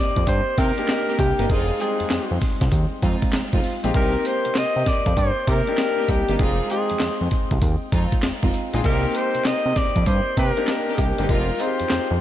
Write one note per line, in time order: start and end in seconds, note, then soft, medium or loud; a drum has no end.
0.00 0.16 A#3 medium
0.00 0.16 C4 medium
0.00 0.16 D#4 medium
0.00 0.16 G4 medium
0.00 0.28 D5 loud
0.16 0.24 F2 medium
0.16 kick medium
0.16 closed hi-hat medium
0.27 0.41 G2 loud
0.27 0.60 C5 loud
0.27 kick loud
0.27 closed hi-hat medium
0.27 tambourine medium
0.57 0.72 C3 loud
0.57 0.75 A#3 medium
0.57 0.75 C4 medium
0.57 0.75 D#4 medium
0.57 0.75 G4 medium
0.57 1.19 A#4 loud
0.57 kick loud
0.57 closed hi-hat medium
0.57 tambourine medium
0.78 0.87 A#3 medium
0.78 0.87 D4 medium
0.78 0.87 D#4 medium
0.78 0.88 G4 medium
0.78 closed hi-hat soft
0.88 1.31 A#3 medium
0.88 1.31 D4 medium
0.88 1.31 D#4 medium
0.88 1.32 G4 medium
0.88 snare loud
0.88 clap medium
0.88 closed hi-hat medium
0.88 tambourine loud
1.08 1.17 A#3 medium
1.08 1.17 C4 medium
1.08 1.17 D#4 medium
1.08 1.18 G4 medium
1.19 1.33 C2 loud
1.19 1.52 G4 loud
1.19 kick medium
1.19 closed hi-hat medium
1.19 tambourine medium
1.38 1.47 G1 medium
1.38 1.49 A#3 medium
1.38 1.48 A#3 medium
1.38 1.48 C4 medium
1.38 1.50 D4 medium
1.38 1.48 D#4 medium
1.38 1.50 D#4 medium
1.38 1.48 G4 medium
1.38 1.50 A#4 medium
1.38 closed hi-hat medium
1.49 1.71 F1 loud
1.49 1.78 G#3 loud
1.49 1.78 C4 medium
1.49 1.78 D#4 medium
1.49 1.79 F4 loud
1.49 1.81 G#4 medium
1.49 kick loud
1.49 closed hi-hat medium
1.80 1.89 G3 medium
1.80 2.92 C4 medium
1.80 2.92 D#4 medium
1.80 2.38 G#4 medium
1.80 2.92 G5 medium
1.80 closed hi-hat medium
1.80 tambourine medium
1.86 2.94 G#3 medium
2.00 2.05 F2 soft
2.00 closed hi-hat medium
2.10 2.19 F2 soft
2.10 snare loud
2.10 clap loud
2.10 closed hi-hat medium
2.10 tambourine medium
2.31 2.39 F2 medium
2.41 kick medium
2.41 open hi-hat medium
2.41 tambourine medium
2.61 2.69 C2 loud
2.61 kick medium
2.61 snare medium
2.61 closed hi-hat medium
2.72 2.86 D#2 medium
2.72 kick loud
2.72 closed hi-hat medium
2.72 tambourine medium
3.02 3.17 F2 loud
3.02 3.19 G#3 medium
3.02 3.19 C4 medium
3.02 3.19 D#4 medium
3.02 3.20 F4 medium
3.02 kick loud
3.02 closed hi-hat medium
3.02 tambourine medium
3.22 kick medium
3.22 closed hi-hat soft
3.33 3.42 F1 soft
3.33 snare loud
3.33 clap loud
3.33 closed hi-hat medium
3.33 tambourine loud
3.53 3.61 F1 medium
3.53 3.62 G#3 medium
3.53 3.62 C4 medium
3.53 3.62 D#4 medium
3.53 3.62 F4 medium
3.53 kick loud
3.64 open hi-hat medium
3.64 tambourine medium
3.83 3.92 A#1 medium
3.83 3.93 G#3 medium
3.83 3.93 C4 medium
3.83 3.93 D#4 medium
3.83 3.93 F4 medium
3.83 3.94 G4 medium
3.83 closed hi-hat medium
3.94 4.16 C2 loud
3.94 4.23 A#3 medium
3.94 5.06 A#3 medium
3.94 4.23 C4 medium
3.94 5.06 C4 medium
3.94 4.23 D#4 medium
3.94 5.06 D#4 medium
3.94 4.23 G4 loud
3.94 5.06 G4 medium
3.94 4.28 A#4 loud
3.94 kick loud
3.94 closed hi-hat medium
4.25 4.59 C5 loud
4.25 closed hi-hat medium
4.25 tambourine medium
4.45 4.50 C3 soft
4.45 closed hi-hat medium
4.55 4.64 C3 soft
4.55 4.89 D#5 loud
4.55 snare loud
4.55 clap loud
4.55 closed hi-hat medium
4.55 tambourine medium
4.76 4.84 C3 medium
4.86 5.18 D5 loud
4.86 kick medium
4.86 snare medium
4.86 closed hi-hat medium
4.86 tambourine medium
5.06 5.14 F2 loud
5.06 kick medium
5.06 closed hi-hat medium
5.17 5.31 G2 loud
5.17 5.51 C5 loud
5.17 kick loud
5.17 closed hi-hat medium
5.17 tambourine medium
5.47 5.62 C3 loud
5.47 5.64 A#3 medium
5.47 5.65 C4 medium
5.47 5.65 D#4 medium
5.47 5.65 G4 medium
5.47 6.12 A#4 loud
5.47 kick loud
5.47 closed hi-hat medium
5.47 tambourine medium
5.67 5.77 A#3 medium
5.67 5.77 D4 medium
5.67 5.77 D#4 medium
5.67 5.77 G4 medium
5.67 closed hi-hat soft
5.78 6.21 A#3 medium
5.78 6.21 D4 medium
5.78 6.21 D#4 medium
5.78 6.22 G4 medium
5.78 snare loud
5.78 clap medium
5.78 closed hi-hat medium
5.78 tambourine loud
5.98 6.07 A#3 medium
5.98 6.07 C4 medium
5.98 6.07 D#4 medium
5.98 6.07 G4 medium
6.08 6.23 C2 loud
6.08 6.36 G4 medium
6.08 kick medium
6.08 closed hi-hat medium
6.08 tambourine medium
6.28 6.37 G1 medium
6.28 6.38 A#3 medium
6.28 6.39 A#3 medium
6.28 6.38 C4 medium
6.28 6.40 D4 medium
6.28 6.38 D#4 medium
6.28 6.40 D#4 medium
6.28 6.38 G4 medium
6.28 6.40 G4 medium
6.28 closed hi-hat medium
6.36 6.61 F1 loud
6.36 6.68 G#3 loud
6.36 6.68 C4 medium
6.36 6.68 D#4 medium
6.36 6.68 F4 loud
6.36 6.42 G4 medium
6.36 kick loud
6.36 closed hi-hat medium
6.40 6.71 G#4 loud
6.70 7.81 G#3 medium
6.70 7.81 C4 medium
6.70 7.82 D#4 medium
6.70 7.28 G#4 loud
6.70 7.82 G5 medium
6.70 closed hi-hat medium
6.70 tambourine medium
6.90 6.95 F2 soft
6.90 closed hi-hat medium
7.00 7.09 F2 medium
7.00 snare loud
7.00 clap loud
7.00 closed hi-hat medium
7.00 tambourine medium
7.21 7.29 F2 medium
7.31 kick medium
7.31 closed hi-hat medium
7.31 tambourine medium
7.51 7.59 C2 medium
7.51 kick medium
7.51 closed hi-hat medium
7.62 7.76 D#2 loud
7.62 kick loud
7.62 closed hi-hat medium
7.62 tambourine medium
7.92 8.07 F2 loud
7.92 8.09 G#3 medium
7.92 8.10 C4 medium
7.92 8.10 D#4 medium
7.92 8.10 F4 loud
7.92 kick loud
7.92 closed hi-hat medium
7.92 tambourine medium
8.12 kick loud
8.12 closed hi-hat soft
8.23 8.31 F1 soft
8.23 snare loud
8.23 clap loud
8.23 closed hi-hat medium
8.23 tambourine loud
8.43 8.51 F1 medium
8.43 8.52 G#3 medium
8.43 8.52 C4 medium
8.43 8.52 D#4 medium
8.43 8.52 F4 medium
8.43 kick loud
8.53 closed hi-hat medium
8.53 tambourine medium
8.73 8.81 A#1 medium
8.73 8.83 G#3 medium
8.73 8.83 C4 medium
8.73 8.83 D#4 medium
8.73 8.83 F4 medium
8.73 8.83 G#4 medium
8.73 closed hi-hat medium
8.84 9.06 C2 loud
8.84 9.13 A#3 loud
8.84 9.95 A#3 medium
8.84 9.13 C4 medium
8.84 9.96 C4 medium
8.84 9.13 D#4 medium
8.84 9.96 D#4 medium
8.84 9.13 G4 loud
8.84 9.96 G4 medium
8.84 9.18 A#4 loud
8.84 kick loud
8.84 closed hi-hat medium
9.15 9.48 C5 loud
9.15 closed hi-hat medium
9.15 tambourine medium
9.35 9.39 C3 soft
9.35 closed hi-hat medium
9.45 9.54 C3 soft
9.45 9.79 D#5 loud
9.45 snare loud
9.45 clap loud
9.45 closed hi-hat medium
9.45 tambourine medium
9.66 9.73 C3 medium
9.76 10.09 D5 loud
9.76 kick medium
9.76 snare medium
9.76 closed hi-hat medium
9.76 tambourine medium
9.96 10.04 F2 loud
9.96 kick loud
9.96 closed hi-hat soft
10.06 10.21 G2 loud
10.06 10.38 C5 loud
10.06 kick loud
10.06 closed hi-hat medium
10.06 tambourine medium
10.37 10.51 C3 loud
10.37 10.54 A#3 medium
10.37 10.54 C4 medium
10.37 10.54 D#4 medium
10.37 10.55 G4 medium
10.37 10.97 A#4 loud
10.37 kick loud
10.37 closed hi-hat medium
10.37 tambourine medium
10.57 10.66 A#3 medium
10.57 10.66 D4 medium
10.57 10.67 D#4 medium
10.57 10.67 G4 medium
10.57 closed hi-hat soft
10.67 11.11 A#3 medium
10.67 11.11 D4 medium
10.67 11.11 D#4 medium
10.67 11.11 G4 medium
10.67 snare loud
10.67 clap medium
10.67 closed hi-hat medium
10.67 tambourine loud
10.87 10.97 A#3 medium
10.87 10.97 C4 medium
10.87 10.97 D#4 medium
10.87 10.97 G4 medium
10.95 11.13 C2 loud
10.95 11.02 G#4 medium
10.95 kick medium
10.95 closed hi-hat medium
10.95 tambourine medium
11.00 11.32 G4 medium
11.18 11.27 G1 medium
11.18 11.29 A#3 medium
11.18 11.27 A#3 medium
11.18 11.28 C4 medium
11.18 11.29 D4 medium
11.18 11.28 D#4 medium
11.18 11.29 D#4 medium
11.18 11.28 G4 medium
11.18 11.29 G4 medium
11.18 closed hi-hat medium
11.29 11.51 F1 loud
11.29 11.58 G#3 medium
11.29 11.58 C4 medium
11.29 11.58 D#4 loud
11.29 11.58 F4 loud
11.29 11.63 A#4 medium
11.29 kick loud
11.29 closed hi-hat medium
11.59 12.21 G#3 medium
11.59 12.21 C4 medium
11.59 12.21 D#4 medium
11.59 11.69 F4 medium
11.59 12.21 C5 loud
11.59 closed hi-hat medium
11.59 tambourine medium
11.67 12.21 G4 medium
11.80 11.85 F2 medium
11.80 closed hi-hat medium
11.90 11.99 F2 soft
11.90 snare loud
11.90 clap medium
11.90 closed hi-hat medium
11.90 tambourine medium
12.11 12.18 F2 loud